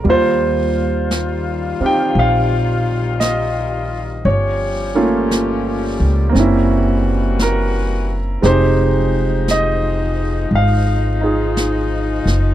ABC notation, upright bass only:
X:1
M:4/4
L:1/8
Q:"Swing" 1/4=57
K:Fm
V:1 name="Upright bass" clef=bass
E,,3 z B,,,4 | G,,,3 D,, _G,,,4 | F,,,4 A,,,3 _G,,, |]